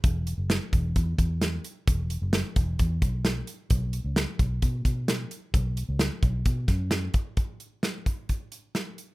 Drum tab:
HH |xxxxxxxx|xxxxxxxx|xxxxxxxx|xxxxxxxx|
SD |--o---o-|--o---o-|--o---o-|--o--oo-|
BD |o--ooo--|o--ooo--|o--ooo--|o--ooo-o|

HH |xxxxxxxx|
SD |--o---o-|
BD |o--oo---|